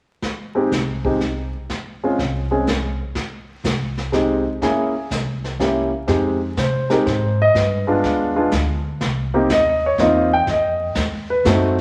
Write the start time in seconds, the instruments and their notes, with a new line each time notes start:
0.22 brush sweep, kick, snare
0.55 grand piano G#3 C4 D#4 G4
0.71 upright bass C2, kick, snare, hi-hat pedal
1.05 grand piano G#3 C4 D#4 G4, kick
1.21 kick, snare
1.70 brush sweep, kick, snare
2.03 grand piano G#3 C4 C#4 F4
2.19 upright bass C2, kick, snare
2.51 grand piano G#3 C4 C#4 G#4
2.67 kick, snare, hi-hat pedal
3.15 brush sweep, kick, snare
3.64 upright bass C2, kick, snare, hi-hat pedal
3.97 snare
4.12 grand piano G#3 C4 D#4 G4, kick, snare
4.62 grand piano A#3 C#4 E4 G#4, brush sweep, kick, snare
5.10 upright bass C2, kick, snare, hi-hat pedal
5.44 snare
5.59 grand piano A#3 C#4 E4 G4, kick, snare
6.07 upright bass F2, grand piano G#3 C4 D#4 G4, brush sweep, kick, snare
6.57 upright bass C3, grand piano C5, kick, snare, hi-hat pedal
6.90 grand piano G#3 C4 D#4 G4 A#4, snare
7.06 upright bass G#2, grand piano C5, kick, snare
7.42 grand piano D#5
7.54 upright bass G2, grand piano B4, brush sweep, kick, snare
7.87 grand piano G#3 B3 D4 F4
8.04 upright bass D#2, kick, snare
8.36 grand piano G#3 B3 D4 F4
8.52 upright bass D2, kick, snare, hi-hat pedal
9.01 upright bass C2, brush sweep, kick, snare
9.34 grand piano A#3 C4 D#4 G4
9.50 upright bass D#2, grand piano D#5, kick, snare, hi-hat pedal
9.86 grand piano C#5
9.98 upright bass E2, grand piano A#3 C4 D#4 F4 D#5, kick, snare
10.33 grand piano G5
10.46 upright bass F2, grand piano D#5, brush sweep, kick, snare
10.95 upright bass D#2, kick, snare, hi-hat pedal
11.30 grand piano B4
11.45 upright bass F#2, grand piano A3 C4 D#4 F#4 C5, kick, snare, hi-hat pedal